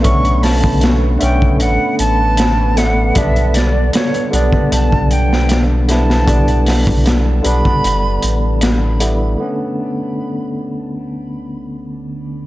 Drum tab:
HH |xxo-x-x-x-x-x-x-|xxx-xxx-x-x-x-x-|xxo-x-x-x-x-x-x-|----------------|
SD |--o-o-------o-o-|--o-o------oo-oo|--o-o-------o---|----------------|
BD |o--o---o--------|o------o-o------|o--o---o--------|----------------|